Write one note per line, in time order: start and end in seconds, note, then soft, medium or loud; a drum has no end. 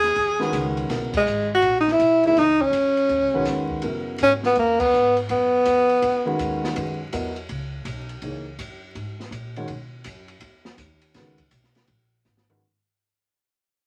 0.00 0.15 E2 medium
0.00 0.75 G#4 loud
0.00 snare soft
0.00 ride soft
0.16 0.52 D#2 medium
0.16 ride medium
0.39 0.87 D#3 medium
0.39 0.87 G#3 medium
0.39 0.87 C#4 medium
0.39 0.87 F#4 medium
0.39 0.87 B4 medium
0.39 snare soft
0.52 0.88 C#2 loud
0.52 hi-hat pedal medium
0.52 ride medium
0.77 ride soft
0.89 1.25 B1 medium
0.89 1.12 C#3 medium
0.89 1.12 F#3 soft
0.89 1.12 B3 medium
0.89 1.12 E4 soft
0.89 1.12 A#4 medium
0.89 snare soft
0.89 ride medium
1.13 1.50 G#3 medium
1.13 kick medium
1.13 crash medium
1.26 1.62 G#1 medium
1.26 hi-hat pedal medium
1.55 1.78 F#4 medium
1.62 1.98 A#1 medium
1.62 ride medium
1.81 1.93 D#4 medium
1.88 snare soft
1.92 2.26 E4 loud
1.99 2.35 B1 medium
1.99 hi-hat pedal soft
1.99 ride medium
2.23 2.36 E3 medium
2.23 2.36 A#3 medium
2.23 2.36 D#4 medium
2.23 2.40 E4 medium
2.23 2.36 G#4 medium
2.23 2.36 C#5 medium
2.23 ride soft
2.36 2.71 C#2 medium
2.36 2.63 D#4 loud
2.36 snare soft
2.36 ride medium
2.60 3.71 C#4 medium
2.60 kick medium
2.71 3.08 F#2 medium
2.71 hi-hat pedal medium
2.71 ride medium
2.97 ride soft
3.09 3.21 D#2 medium
3.09 ride medium
3.21 3.34 C#2 medium
3.34 3.46 B1 medium
3.34 3.80 D#3 medium
3.34 3.81 G#3 medium
3.34 3.81 C#4 medium
3.34 3.81 F#4 medium
3.34 3.81 B4 medium
3.45 3.82 E2 medium
3.45 snare soft
3.45 hi-hat pedal medium
3.45 ride medium
3.70 kick medium
3.82 4.19 F#2 medium
3.82 4.85 C#3 medium
3.82 4.85 F#3 medium
3.82 4.85 B3 medium
3.82 4.85 E4 soft
3.82 4.86 A#4 medium
3.82 ride medium
4.18 4.56 G#2 medium
4.18 hi-hat pedal medium
4.18 ride medium
4.23 4.33 C#4 loud
4.43 4.57 B3 medium
4.43 snare medium
4.55 4.92 E2 medium
4.55 4.82 A#3 medium
4.55 ride medium
4.80 5.17 B3 loud
4.80 kick medium
4.80 crash medium
4.93 5.29 G#2 medium
4.93 hi-hat pedal medium
5.17 ride medium
5.29 5.65 F#2 medium
5.29 6.36 B3 medium
5.29 ride medium
5.65 6.02 F2 medium
5.65 hi-hat pedal medium
5.65 ride medium
5.89 ride soft
6.02 6.38 E2 medium
6.02 ride medium
6.25 6.73 D#3 medium
6.25 6.73 G#3 medium
6.25 6.73 C#4 medium
6.25 6.73 F#4 medium
6.25 6.73 B4 medium
6.39 6.74 D#2 medium
6.39 hi-hat pedal medium
6.39 ride medium
6.64 snare medium
6.75 7.11 F#2 medium
6.75 6.97 D#3 soft
6.75 6.97 G#3 soft
6.75 6.97 C#4 medium
6.75 6.97 F#4 medium
6.75 6.97 B4 medium
6.75 ride medium
7.13 7.48 E2 medium
7.13 7.34 F#3 medium
7.13 7.34 B3 medium
7.13 7.34 E4 medium
7.13 7.34 A#4 medium
7.13 7.34 D#5 medium
7.13 hi-hat pedal medium
7.13 ride medium
7.36 ride soft
7.49 7.85 C#2 medium
7.49 ride medium
7.85 8.21 B1 loud
7.85 hi-hat pedal medium
7.85 ride medium
8.09 ride soft
8.22 8.58 C#2 medium
8.22 8.44 E3 medium
8.22 8.44 A#3 soft
8.22 8.44 D#4 medium
8.22 8.44 G#4 soft
8.22 8.44 C#5 medium
8.22 ride medium
8.59 8.94 F#2 medium
8.59 hi-hat pedal medium
8.59 ride medium
8.95 9.30 G#2 medium
8.95 ride medium
9.20 snare soft
9.31 9.67 A#2 loud
9.31 hi-hat pedal medium
9.31 ride medium
9.56 9.68 D#3 medium
9.56 9.68 G#3 medium
9.56 9.68 C#4 medium
9.56 9.68 F#4 medium
9.56 9.68 C#5 medium
9.56 ride soft
9.68 10.04 B2 medium
9.68 ride medium
10.04 10.41 F#2 medium
10.04 hi-hat pedal medium
10.04 ride medium
10.28 ride soft
10.40 10.77 E2 medium
10.40 ride medium
10.65 snare medium
10.78 11.13 D#2 medium
10.78 hi-hat pedal soft
10.78 ride medium
11.01 ride soft
11.14 11.50 C#2 medium
11.14 11.37 D#3 medium
11.14 11.37 G#3 soft
11.14 11.37 C#4 soft
11.14 11.37 F#4 soft
11.14 11.38 B4 medium
11.14 snare soft
11.14 ride medium
11.38 kick medium
11.38 ride soft
11.51 11.87 B1 medium
11.51 hi-hat pedal medium
11.51 ride medium
11.64 snare soft
11.75 snare soft
11.75 ride soft
11.87 12.24 A#1 medium
11.87 ride medium
12.24 12.61 G#1 medium
12.24 snare soft
12.24 hi-hat pedal soft
12.37 snare medium
12.49 12.61 D#3 medium
12.49 12.61 G#3 medium
12.49 12.61 C#4 medium
12.49 12.61 F#4 medium
12.49 12.61 B4 medium
12.49 floor tom medium